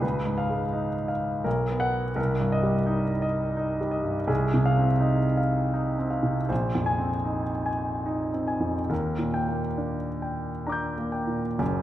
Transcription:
0.01 C#2 B4
0.26 G#2
0.38 F5
0.50 G#3
0.73 D#4
1.08 F5
1.44 B1 A#4
1.69 B3
1.80 F#5
2.16 C2 A#4
2.40 G2
2.52 D#5
2.63 G3
2.86 D#4
3.22 D#5
3.57 D#4
3.81 G3
3.91 D#5
4.04 G2
4.27 C2 G#4
4.54 C3
4.66 F5
4.77 C4
5.00 D#4
5.37 F5
5.74 D#4
5.99 C4
6.10 F5
6.23 C3
6.49 A#1 C5
6.75 F2
6.86 G#5
6.99 C4
7.25 D#4
7.66 G#5
8.06 D#4
8.34 C4
8.47 G#5
8.60 F2
8.89 D#2 A#4
9.19 A#2
9.34 G5
9.48 A#3
9.77 D4
10.22 G5
10.67 D4 A#5 D6
10.72 G6
10.98 A#3
11.12 G5
11.27 A#2
11.59 F#1 F#2

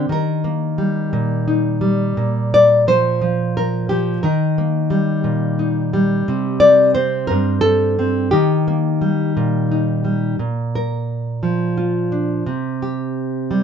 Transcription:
Already playing: G4 A#4
0.09 D#3 A#4
0.44 A#3
0.78 G3
1.13 A#2
1.48 D#4
1.81 G3
2.17 A#2
2.54 D5
2.87 F3 C5
3.21 F3
3.57 A#4
3.89 F3 G4
4.23 D#3 A#4
4.58 A#3
4.90 G3
5.24 A#2
5.59 D#4
5.93 G3
6.28 C3
6.60 D5
6.95 C4 C5
7.27 G2 A#4
7.61 A4
7.99 C4
8.31 D#3 G4
8.68 A#3
9.01 G3
9.37 A#2
9.71 D#4
10.04 G3
10.39 A#2
10.75 A#4
11.43 F3
11.77 F4
12.12 D4
12.46 C3
12.82 G4
13.51 G3

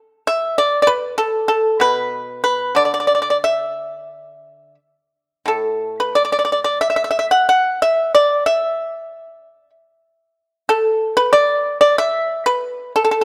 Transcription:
0.27 E5
0.58 D5
0.82 D5
0.87 B4
1.18 A4
1.48 A4
1.80 B2 B4
2.44 B4
2.75 D3 D5
2.85 D5
2.94 D5
3.00 D5
3.07 D5
3.15 D5
3.22 D5
3.30 D5
3.44 E5
5.46 A2 A4
6.00 B4
6.15 D5
6.25 D5
6.32 D5
6.39 D5
6.45 D5
6.52 D5
6.64 D5
6.81 E5
6.90 E5
6.96 E5
7.04 E5
7.11 E5
7.19 E5
7.31 F#5
7.49 F#5
7.82 E5
8.15 D5
8.46 E5
10.69 A4
11.17 B4
11.33 D5
11.81 D5
11.98 E5
12.46 B4
12.96 A4
13.04 A4
13.11 A4

